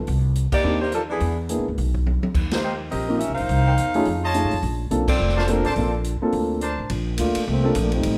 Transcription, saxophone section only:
0, 0, Header, 1, 2, 480
1, 0, Start_track
1, 0, Key_signature, -2, "major"
1, 0, Tempo, 284900
1, 113, Time_signature, 4, 2, 24, 8
1, 13780, End_track
2, 0, Start_track
2, 0, Title_t, "Saxophone section"
2, 0, Program_c, 0, 65
2, 891, Note_on_c, 0, 58, 87
2, 895, Note_on_c, 0, 74, 107
2, 899, Note_on_c, 0, 67, 90
2, 905, Note_on_c, 0, 63, 86
2, 1331, Note_off_c, 0, 58, 0
2, 1333, Note_off_c, 0, 74, 0
2, 1335, Note_off_c, 0, 67, 0
2, 1339, Note_off_c, 0, 63, 0
2, 1378, Note_on_c, 0, 63, 73
2, 1379, Note_on_c, 0, 72, 87
2, 1380, Note_on_c, 0, 67, 81
2, 1385, Note_on_c, 0, 58, 76
2, 1551, Note_off_c, 0, 63, 0
2, 1551, Note_off_c, 0, 72, 0
2, 1552, Note_off_c, 0, 67, 0
2, 1555, Note_off_c, 0, 58, 0
2, 1582, Note_on_c, 0, 58, 76
2, 1582, Note_on_c, 0, 62, 68
2, 1585, Note_on_c, 0, 69, 87
2, 1586, Note_on_c, 0, 53, 71
2, 1703, Note_off_c, 0, 58, 0
2, 1703, Note_off_c, 0, 62, 0
2, 1706, Note_off_c, 0, 69, 0
2, 1707, Note_off_c, 0, 53, 0
2, 1852, Note_on_c, 0, 62, 63
2, 1860, Note_on_c, 0, 59, 67
2, 1868, Note_on_c, 0, 68, 77
2, 1869, Note_on_c, 0, 52, 63
2, 2292, Note_off_c, 0, 62, 0
2, 2296, Note_off_c, 0, 59, 0
2, 2300, Note_off_c, 0, 52, 0
2, 2300, Note_off_c, 0, 68, 0
2, 4246, Note_on_c, 0, 63, 67
2, 4247, Note_on_c, 0, 58, 65
2, 4250, Note_on_c, 0, 72, 82
2, 4254, Note_on_c, 0, 67, 64
2, 4689, Note_off_c, 0, 58, 0
2, 4689, Note_off_c, 0, 63, 0
2, 4691, Note_off_c, 0, 72, 0
2, 4693, Note_off_c, 0, 67, 0
2, 4889, Note_on_c, 0, 67, 73
2, 4898, Note_on_c, 0, 75, 92
2, 4902, Note_on_c, 0, 70, 77
2, 4905, Note_on_c, 0, 60, 71
2, 5335, Note_off_c, 0, 70, 0
2, 5340, Note_off_c, 0, 67, 0
2, 5352, Note_off_c, 0, 75, 0
2, 5355, Note_on_c, 0, 70, 78
2, 5356, Note_off_c, 0, 60, 0
2, 5361, Note_on_c, 0, 67, 78
2, 5361, Note_on_c, 0, 76, 86
2, 5369, Note_on_c, 0, 61, 81
2, 5607, Note_off_c, 0, 70, 0
2, 5626, Note_on_c, 0, 72, 83
2, 5626, Note_on_c, 0, 77, 105
2, 5627, Note_on_c, 0, 70, 82
2, 5634, Note_on_c, 0, 63, 89
2, 5661, Note_off_c, 0, 67, 0
2, 5662, Note_off_c, 0, 76, 0
2, 5665, Note_off_c, 0, 61, 0
2, 6741, Note_off_c, 0, 72, 0
2, 6742, Note_off_c, 0, 70, 0
2, 7505, Note_off_c, 0, 77, 0
2, 7509, Note_off_c, 0, 63, 0
2, 8571, Note_on_c, 0, 69, 91
2, 8572, Note_on_c, 0, 65, 90
2, 8576, Note_on_c, 0, 60, 88
2, 8579, Note_on_c, 0, 74, 106
2, 9012, Note_off_c, 0, 65, 0
2, 9012, Note_off_c, 0, 69, 0
2, 9014, Note_off_c, 0, 60, 0
2, 9016, Note_off_c, 0, 74, 0
2, 9043, Note_on_c, 0, 65, 75
2, 9046, Note_on_c, 0, 57, 81
2, 9054, Note_on_c, 0, 72, 91
2, 9057, Note_on_c, 0, 62, 74
2, 9237, Note_off_c, 0, 65, 0
2, 9239, Note_off_c, 0, 57, 0
2, 9242, Note_off_c, 0, 72, 0
2, 9244, Note_off_c, 0, 62, 0
2, 9250, Note_on_c, 0, 60, 70
2, 9254, Note_on_c, 0, 53, 72
2, 9259, Note_on_c, 0, 70, 86
2, 9264, Note_on_c, 0, 62, 73
2, 9526, Note_off_c, 0, 60, 0
2, 9528, Note_off_c, 0, 53, 0
2, 9531, Note_off_c, 0, 70, 0
2, 9533, Note_off_c, 0, 62, 0
2, 9541, Note_on_c, 0, 74, 99
2, 9543, Note_on_c, 0, 60, 75
2, 9546, Note_on_c, 0, 65, 77
2, 9558, Note_on_c, 0, 69, 75
2, 10009, Note_off_c, 0, 74, 0
2, 10011, Note_off_c, 0, 60, 0
2, 10012, Note_off_c, 0, 65, 0
2, 10018, Note_off_c, 0, 69, 0
2, 13780, End_track
0, 0, End_of_file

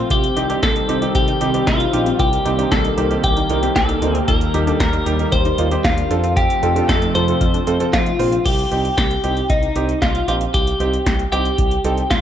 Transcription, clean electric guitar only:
0, 0, Header, 1, 2, 480
1, 0, Start_track
1, 0, Tempo, 521739
1, 98, Time_signature, 4, 2, 24, 8
1, 11233, End_track
2, 0, Start_track
2, 0, Title_t, "Clean electric guitar"
2, 0, Program_c, 0, 27
2, 0, Note_on_c, 0, 65, 84
2, 100, Note_off_c, 0, 65, 0
2, 103, Note_on_c, 0, 67, 91
2, 577, Note_off_c, 0, 67, 0
2, 580, Note_on_c, 0, 69, 91
2, 1057, Note_off_c, 0, 69, 0
2, 1061, Note_on_c, 0, 67, 85
2, 1535, Note_off_c, 0, 67, 0
2, 1539, Note_on_c, 0, 65, 84
2, 2017, Note_off_c, 0, 65, 0
2, 2021, Note_on_c, 0, 67, 97
2, 2496, Note_off_c, 0, 67, 0
2, 2499, Note_on_c, 0, 69, 97
2, 2976, Note_off_c, 0, 69, 0
2, 2980, Note_on_c, 0, 67, 97
2, 3453, Note_off_c, 0, 67, 0
2, 3457, Note_on_c, 0, 69, 101
2, 3935, Note_off_c, 0, 69, 0
2, 3938, Note_on_c, 0, 70, 108
2, 4297, Note_off_c, 0, 70, 0
2, 4297, Note_on_c, 0, 69, 108
2, 4409, Note_off_c, 0, 69, 0
2, 4420, Note_on_c, 0, 70, 104
2, 4893, Note_off_c, 0, 70, 0
2, 4897, Note_on_c, 0, 72, 108
2, 5344, Note_off_c, 0, 72, 0
2, 5377, Note_on_c, 0, 65, 97
2, 5824, Note_off_c, 0, 65, 0
2, 5857, Note_on_c, 0, 67, 103
2, 6339, Note_on_c, 0, 69, 97
2, 6351, Note_off_c, 0, 67, 0
2, 6575, Note_off_c, 0, 69, 0
2, 6579, Note_on_c, 0, 72, 102
2, 7301, Note_on_c, 0, 65, 100
2, 7501, Note_off_c, 0, 72, 0
2, 7780, Note_on_c, 0, 67, 105
2, 7794, Note_off_c, 0, 65, 0
2, 8246, Note_off_c, 0, 67, 0
2, 8257, Note_on_c, 0, 67, 98
2, 8704, Note_off_c, 0, 67, 0
2, 8739, Note_on_c, 0, 63, 88
2, 9219, Note_on_c, 0, 65, 94
2, 9233, Note_off_c, 0, 63, 0
2, 9442, Note_off_c, 0, 65, 0
2, 9461, Note_on_c, 0, 65, 88
2, 9525, Note_off_c, 0, 65, 0
2, 9699, Note_on_c, 0, 67, 103
2, 10381, Note_off_c, 0, 67, 0
2, 10417, Note_on_c, 0, 67, 104
2, 11134, Note_off_c, 0, 67, 0
2, 11138, Note_on_c, 0, 65, 91
2, 11233, Note_off_c, 0, 65, 0
2, 11233, End_track
0, 0, End_of_file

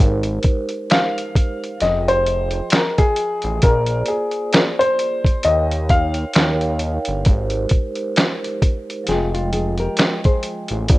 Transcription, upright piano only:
0, 0, Header, 1, 2, 480
1, 0, Start_track
1, 0, Key_signature, -4, "major"
1, 0, Tempo, 909091
1, 1916, Time_signature, 4, 2, 24, 8
1, 5800, End_track
2, 0, Start_track
2, 0, Title_t, "Upright piano"
2, 0, Program_c, 0, 0
2, 482, Note_on_c, 0, 77, 90
2, 938, Note_off_c, 0, 77, 0
2, 959, Note_on_c, 0, 75, 92
2, 1098, Note_off_c, 0, 75, 0
2, 1099, Note_on_c, 0, 72, 106
2, 1437, Note_on_c, 0, 70, 78
2, 1449, Note_off_c, 0, 72, 0
2, 1575, Note_on_c, 0, 68, 98
2, 1577, Note_off_c, 0, 70, 0
2, 1896, Note_off_c, 0, 68, 0
2, 1916, Note_on_c, 0, 70, 91
2, 2156, Note_on_c, 0, 68, 70
2, 2163, Note_off_c, 0, 70, 0
2, 2393, Note_on_c, 0, 70, 74
2, 2403, Note_off_c, 0, 68, 0
2, 2424, Note_off_c, 0, 70, 0
2, 2531, Note_on_c, 0, 72, 109
2, 2876, Note_on_c, 0, 75, 92
2, 2885, Note_off_c, 0, 72, 0
2, 3116, Note_on_c, 0, 77, 95
2, 3123, Note_off_c, 0, 75, 0
2, 3575, Note_off_c, 0, 77, 0
2, 5800, End_track
0, 0, End_of_file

